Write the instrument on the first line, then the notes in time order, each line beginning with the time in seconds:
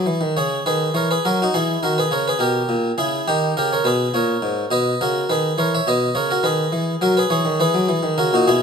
harpsichord
Already playing: G#4 B4
0.06 E3
0.21 D#3
0.37 C#3 G#4 C#5
0.66 D#3 G#4 B4
0.94 E3 A#4 C#5
1.11 G#4 B4
1.25 F#3 F#4 A#4
1.42 D#4 F#4
1.54 E3 E4 G#4
1.83 D#3 F#4 A#4
1.98 G#4 B4
2.11 C#3 A#4 C#5
2.28 G#4 B4
2.39 B2 G4 A#4
2.69 A#2
2.98 C#3 E4 G#4
3.28 D#3 D#4 G4
3.57 C#3 G4 A#4
3.73 A#4 C#5
3.84 B2 G#4 B4
4.14 A#2 A#4 C#5
4.42 G#2
4.71 B2 B4 D#5
5.01 C#3 F#4 A#4
5.30 D#3 G#4 B4
5.58 E3 A#4 C#5
5.75 C#5 E5
5.87 B2 B4 D#5
6.15 C#3 A#4 C#5
6.31 F#4 A#4
6.43 D#3 G#4 B4
6.72 E3
7.01 F#3 F#4 A#4
7.17 G#4 B4
7.30 E3 G#4 C#5
7.45 D#3
7.60 E3 G#4 B4
7.74 F#3
7.89 E3
8.03 D#3
8.18 C#3 F#4 A#4
8.33 A#2 D#4 F#4
8.48 B2 E4 G#4